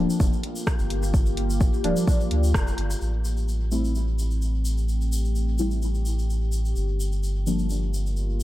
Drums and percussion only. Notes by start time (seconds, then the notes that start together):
0.10 shaker
0.20 kick, shaker
0.33 shaker
0.43 closed hi-hat
0.56 shaker
0.67 kick, cross-stick, shaker
0.79 shaker
0.90 closed hi-hat
1.03 shaker
1.14 kick, shaker
1.26 shaker
1.37 closed hi-hat
1.50 shaker
1.61 kick, shaker
1.74 shaker
1.84 closed hi-hat
1.96 shaker
2.08 kick, shaker
2.21 shaker
2.31 closed hi-hat
2.44 shaker
2.54 kick, cross-stick, shaker
2.67 shaker
2.78 closed hi-hat
2.90 shaker
3.01 shaker
3.25 shaker
3.37 shaker
3.48 shaker
3.71 shaker
3.84 shaker
3.95 shaker
4.19 shaker
4.31 shaker
4.42 shaker
4.65 shaker
4.78 shaker
4.89 shaker
5.01 shaker
5.12 shaker
5.25 shaker
5.35 shaker
5.58 shaker
5.71 shaker
5.82 shaker
5.95 shaker
6.05 shaker
6.19 shaker
6.30 shaker
6.52 shaker
6.65 shaker
6.76 shaker
7.00 shaker
7.12 shaker
7.23 shaker
7.47 shaker
7.59 shaker
7.69 shaker
7.94 shaker
8.06 shaker
8.16 shaker